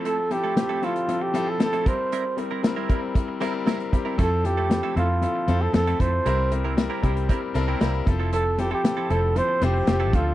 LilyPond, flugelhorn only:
\new Staff \with { instrumentName = "Flugelhorn" } { \time 4/4 \key f \major \tempo 4 = 116 a'8 g'4 f'8. g'8 a'16 a'8 c''8~ | c''8 r2. r8 | a'8 g'4 f'4~ f'16 a'16 a'8 c''8~ | c''8 r2. r8 |
a'8 g'16 g'8. a'8 c''8 g'4 f'8 | }